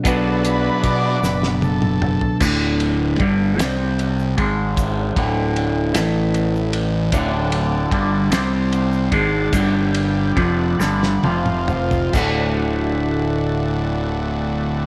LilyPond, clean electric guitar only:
\new Staff \with { instrumentName = "Clean electric guitar" } { \clef bass \time 6/8 \key b \dorian \tempo 4. = 51 <b, fis b d' fis' b'>2. | <d, a, d>4 <g, d g>8 <c g c'>4 <gis, dis gis>8~ | <gis, dis gis>8 <d, a, d>4 <a, e a>4. | <d, a, d>4 <g, d g>8 <c g c'>4 <gis, ees gis>8 |
<g, d g>4 <f, c f>8 <g, d g>8 <f, c f>4 | <d, a, d a fis'>2. | }